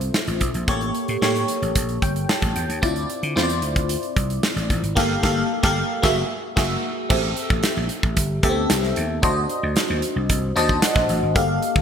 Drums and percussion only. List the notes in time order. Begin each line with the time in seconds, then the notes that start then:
0.01 closed hi-hat
0.14 snare
0.27 closed hi-hat
0.41 kick, closed hi-hat
0.54 closed hi-hat
0.68 kick, closed hi-hat
0.81 closed hi-hat
0.95 closed hi-hat
1.08 closed hi-hat
1.22 snare
1.36 closed hi-hat
1.48 closed hi-hat
1.63 closed hi-hat
1.75 kick, closed hi-hat
1.89 closed hi-hat
2.02 kick, closed hi-hat
2.16 closed hi-hat
2.29 snare
2.42 kick, closed hi-hat
2.56 closed hi-hat
2.70 closed hi-hat
2.83 kick, closed hi-hat
2.96 closed hi-hat
3.10 closed hi-hat
3.23 closed hi-hat
3.37 snare
3.50 closed hi-hat
3.62 closed hi-hat
3.76 kick, closed hi-hat
3.89 closed hi-hat
4.03 closed hi-hat
4.17 kick, closed hi-hat
4.30 closed hi-hat
4.43 snare
4.57 snare, closed hi-hat
4.70 kick, closed hi-hat
4.84 closed hi-hat
4.97 kick, snare, crash
5.23 kick, snare
5.63 kick, snare
6.04 kick, snare
6.57 kick, snare, crash
7.10 kick, crash
7.37 closed hi-hat
7.50 kick
7.63 snare, closed hi-hat
7.89 closed hi-hat
8.03 kick
8.17 kick, closed hi-hat
8.43 kick, closed hi-hat
8.70 snare, closed hi-hat
8.83 snare
8.96 closed hi-hat
9.23 kick, closed hi-hat
9.49 closed hi-hat
9.76 snare, closed hi-hat
10.02 closed hi-hat
10.30 kick, closed hi-hat
10.57 snare, closed hi-hat
10.69 kick
10.82 snare, closed hi-hat
10.96 kick, snare
11.09 closed hi-hat
11.36 kick, closed hi-hat
11.62 closed hi-hat
11.76 kick